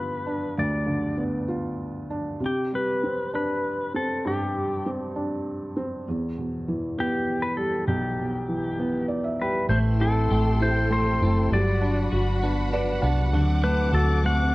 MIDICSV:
0, 0, Header, 1, 6, 480
1, 0, Start_track
1, 0, Key_signature, 1, "major"
1, 0, Tempo, 608519
1, 451, Time_signature, 6, 3, 24, 8
1, 8613, Tempo, 603015
1, 11502, End_track
2, 0, Start_track
2, 0, Title_t, "String section"
2, 0, Program_c, 0, 48
2, 7650, Note_on_c, 0, 79, 52
2, 7652, Note_on_c, 0, 69, 67
2, 7656, Note_on_c, 0, 84, 61
2, 9080, Note_off_c, 0, 79, 0
2, 9081, Note_off_c, 0, 69, 0
2, 9083, Note_off_c, 0, 84, 0
2, 9102, Note_on_c, 0, 66, 67
2, 9106, Note_on_c, 0, 83, 65
2, 9108, Note_on_c, 0, 78, 64
2, 10523, Note_off_c, 0, 66, 0
2, 10525, Note_off_c, 0, 83, 0
2, 10544, Note_on_c, 0, 60, 70
2, 10546, Note_on_c, 0, 86, 69
2, 11502, Note_off_c, 0, 60, 0
2, 11502, Note_off_c, 0, 78, 0
2, 11502, Note_off_c, 0, 86, 0
2, 11502, End_track
3, 0, Start_track
3, 0, Title_t, "Electric slide guitar"
3, 0, Program_c, 1, 29
3, 0, Note_on_c, 1, 71, 67
3, 467, Note_on_c, 1, 74, 58
3, 478, Note_off_c, 1, 71, 0
3, 969, Note_off_c, 1, 74, 0
3, 1940, Note_on_c, 1, 67, 54
3, 2168, Note_off_c, 1, 67, 0
3, 2171, Note_on_c, 1, 71, 64
3, 2635, Note_off_c, 1, 71, 0
3, 2644, Note_on_c, 1, 71, 66
3, 3120, Note_off_c, 1, 71, 0
3, 3123, Note_on_c, 1, 69, 58
3, 3360, Note_off_c, 1, 69, 0
3, 3371, Note_on_c, 1, 67, 58
3, 3865, Note_off_c, 1, 67, 0
3, 5524, Note_on_c, 1, 67, 66
3, 5856, Note_on_c, 1, 71, 73
3, 5875, Note_off_c, 1, 67, 0
3, 5963, Note_off_c, 1, 71, 0
3, 5972, Note_on_c, 1, 69, 70
3, 6213, Note_off_c, 1, 69, 0
3, 6216, Note_on_c, 1, 67, 58
3, 7143, Note_off_c, 1, 67, 0
3, 7426, Note_on_c, 1, 71, 55
3, 7642, Note_off_c, 1, 71, 0
3, 7645, Note_on_c, 1, 72, 66
3, 7711, Note_off_c, 1, 72, 0
3, 7897, Note_on_c, 1, 69, 68
3, 8378, Note_on_c, 1, 72, 70
3, 8390, Note_off_c, 1, 69, 0
3, 8605, Note_off_c, 1, 72, 0
3, 8615, Note_on_c, 1, 72, 81
3, 9100, Note_off_c, 1, 72, 0
3, 9103, Note_on_c, 1, 74, 70
3, 9787, Note_off_c, 1, 74, 0
3, 10775, Note_on_c, 1, 71, 76
3, 11020, Note_off_c, 1, 71, 0
3, 11023, Note_on_c, 1, 69, 87
3, 11242, Note_off_c, 1, 69, 0
3, 11272, Note_on_c, 1, 78, 94
3, 11502, Note_off_c, 1, 78, 0
3, 11502, End_track
4, 0, Start_track
4, 0, Title_t, "Clean electric guitar"
4, 0, Program_c, 2, 27
4, 7655, Note_on_c, 2, 52, 64
4, 7888, Note_on_c, 2, 60, 51
4, 8127, Note_on_c, 2, 67, 55
4, 8372, Note_on_c, 2, 57, 51
4, 8604, Note_off_c, 2, 60, 0
4, 8613, Note_on_c, 2, 60, 41
4, 8847, Note_off_c, 2, 57, 0
4, 8857, Note_on_c, 2, 57, 48
4, 9096, Note_off_c, 2, 52, 0
4, 9100, Note_on_c, 2, 54, 66
4, 9140, Note_off_c, 2, 67, 0
4, 9144, Note_off_c, 2, 60, 0
4, 9145, Note_off_c, 2, 57, 0
4, 9334, Note_on_c, 2, 62, 52
4, 9567, Note_on_c, 2, 66, 54
4, 9811, Note_on_c, 2, 59, 59
4, 10047, Note_off_c, 2, 62, 0
4, 10050, Note_on_c, 2, 62, 50
4, 10284, Note_off_c, 2, 59, 0
4, 10293, Note_on_c, 2, 59, 48
4, 10524, Note_off_c, 2, 54, 0
4, 10533, Note_on_c, 2, 54, 74
4, 10577, Note_off_c, 2, 66, 0
4, 10580, Note_off_c, 2, 62, 0
4, 10582, Note_off_c, 2, 59, 0
4, 10773, Note_on_c, 2, 62, 47
4, 11008, Note_on_c, 2, 69, 58
4, 11256, Note_on_c, 2, 60, 55
4, 11491, Note_off_c, 2, 62, 0
4, 11502, Note_off_c, 2, 54, 0
4, 11502, Note_off_c, 2, 60, 0
4, 11502, Note_off_c, 2, 69, 0
4, 11502, End_track
5, 0, Start_track
5, 0, Title_t, "Felt piano"
5, 0, Program_c, 3, 0
5, 0, Control_c, 3, 64, 127
5, 0, Note_on_c, 3, 43, 42
5, 0, Note_on_c, 3, 50, 35
5, 0, Note_on_c, 3, 59, 39
5, 0, Note_on_c, 3, 65, 41
5, 183, Note_off_c, 3, 50, 0
5, 209, Note_on_c, 3, 62, 39
5, 413, Note_off_c, 3, 43, 0
5, 422, Note_off_c, 3, 59, 0
5, 457, Note_on_c, 3, 38, 39
5, 660, Note_off_c, 3, 65, 0
5, 680, Note_on_c, 3, 50, 36
5, 923, Note_on_c, 3, 59, 38
5, 1143, Note_off_c, 3, 62, 0
5, 1168, Note_on_c, 3, 65, 43
5, 1621, Note_off_c, 3, 50, 0
5, 1659, Note_on_c, 3, 62, 39
5, 1865, Note_off_c, 3, 59, 0
5, 1870, Note_off_c, 3, 38, 0
5, 1875, Note_off_c, 3, 65, 0
5, 1893, Note_off_c, 3, 62, 0
5, 1895, Note_on_c, 3, 48, 37
5, 1909, Control_c, 3, 64, 0
5, 2065, Control_c, 3, 64, 127
5, 2148, Note_on_c, 3, 55, 31
5, 2394, Note_on_c, 3, 60, 36
5, 2630, Note_on_c, 3, 62, 40
5, 3079, Note_off_c, 3, 55, 0
5, 3097, Note_off_c, 3, 60, 0
5, 3109, Note_on_c, 3, 60, 38
5, 3311, Note_off_c, 3, 48, 0
5, 3352, Note_on_c, 3, 43, 48
5, 3558, Note_off_c, 3, 62, 0
5, 3593, Note_on_c, 3, 55, 39
5, 3825, Note_off_c, 3, 60, 0
5, 3837, Note_on_c, 3, 60, 38
5, 4069, Note_on_c, 3, 62, 43
5, 4516, Note_off_c, 3, 55, 0
5, 4537, Note_off_c, 3, 60, 0
5, 4549, Note_on_c, 3, 60, 45
5, 4750, Note_off_c, 3, 43, 0
5, 4759, Note_off_c, 3, 62, 0
5, 4775, Note_off_c, 3, 60, 0
5, 4789, Control_c, 3, 64, 0
5, 4798, Note_on_c, 3, 40, 43
5, 4946, Control_c, 3, 64, 127
5, 5031, Note_on_c, 3, 47, 35
5, 5272, Note_on_c, 3, 52, 39
5, 5509, Note_on_c, 3, 59, 45
5, 5947, Note_off_c, 3, 47, 0
5, 5976, Note_on_c, 3, 55, 46
5, 6185, Note_off_c, 3, 40, 0
5, 6187, Note_off_c, 3, 52, 0
5, 6213, Note_on_c, 3, 35, 46
5, 6427, Note_off_c, 3, 59, 0
5, 6457, Note_on_c, 3, 47, 38
5, 6691, Note_on_c, 3, 52, 39
5, 6904, Note_off_c, 3, 55, 0
5, 6936, Note_on_c, 3, 59, 45
5, 7165, Note_on_c, 3, 74, 49
5, 7279, Note_off_c, 3, 74, 0
5, 7289, Note_on_c, 3, 76, 48
5, 7388, Note_off_c, 3, 47, 0
5, 7402, Note_off_c, 3, 76, 0
5, 7421, Note_on_c, 3, 55, 43
5, 7422, Note_on_c, 3, 79, 49
5, 7624, Note_off_c, 3, 35, 0
5, 7626, Note_off_c, 3, 52, 0
5, 7635, Note_off_c, 3, 59, 0
5, 7642, Note_off_c, 3, 79, 0
5, 7648, Note_on_c, 3, 57, 50
5, 7650, Note_off_c, 3, 55, 0
5, 7661, Control_c, 3, 64, 0
5, 7804, Control_c, 3, 64, 127
5, 7891, Note_on_c, 3, 64, 41
5, 8124, Note_off_c, 3, 57, 0
5, 8136, Note_on_c, 3, 57, 45
5, 8355, Note_off_c, 3, 64, 0
5, 8367, Note_on_c, 3, 64, 42
5, 8588, Note_off_c, 3, 57, 0
5, 8600, Note_on_c, 3, 57, 45
5, 8840, Note_off_c, 3, 64, 0
5, 8852, Note_on_c, 3, 64, 45
5, 9074, Note_off_c, 3, 57, 0
5, 9087, Note_off_c, 3, 64, 0
5, 9089, Note_on_c, 3, 55, 53
5, 9106, Control_c, 3, 64, 0
5, 9234, Control_c, 3, 64, 127
5, 9326, Note_on_c, 3, 62, 41
5, 9571, Note_on_c, 3, 66, 43
5, 9804, Note_off_c, 3, 62, 0
5, 9816, Note_on_c, 3, 62, 43
5, 10056, Note_on_c, 3, 71, 53
5, 10057, Note_on_c, 3, 74, 55
5, 10272, Note_off_c, 3, 62, 0
5, 10278, Note_off_c, 3, 74, 0
5, 10284, Note_on_c, 3, 62, 55
5, 10284, Note_on_c, 3, 78, 64
5, 10499, Note_off_c, 3, 55, 0
5, 10502, Note_off_c, 3, 66, 0
5, 10512, Note_off_c, 3, 78, 0
5, 10521, Note_off_c, 3, 71, 0
5, 10522, Note_off_c, 3, 62, 0
5, 10529, Note_on_c, 3, 50, 57
5, 10542, Control_c, 3, 64, 0
5, 10678, Control_c, 3, 64, 127
5, 10773, Note_on_c, 3, 57, 44
5, 11017, Note_on_c, 3, 66, 47
5, 11245, Note_off_c, 3, 57, 0
5, 11257, Note_on_c, 3, 57, 52
5, 11487, Note_off_c, 3, 66, 0
5, 11502, Note_off_c, 3, 50, 0
5, 11502, Note_off_c, 3, 57, 0
5, 11502, End_track
6, 0, Start_track
6, 0, Title_t, "Fingered electric bass"
6, 0, Program_c, 4, 33
6, 7642, Note_on_c, 4, 33, 85
6, 8100, Note_off_c, 4, 33, 0
6, 8132, Note_on_c, 4, 33, 73
6, 8822, Note_off_c, 4, 33, 0
6, 8849, Note_on_c, 4, 30, 74
6, 9078, Note_off_c, 4, 30, 0
6, 9090, Note_on_c, 4, 31, 87
6, 9544, Note_off_c, 4, 31, 0
6, 9571, Note_on_c, 4, 31, 76
6, 10260, Note_off_c, 4, 31, 0
6, 10289, Note_on_c, 4, 36, 67
6, 10530, Note_off_c, 4, 36, 0
6, 10530, Note_on_c, 4, 38, 86
6, 10983, Note_off_c, 4, 38, 0
6, 11009, Note_on_c, 4, 38, 77
6, 11502, Note_off_c, 4, 38, 0
6, 11502, End_track
0, 0, End_of_file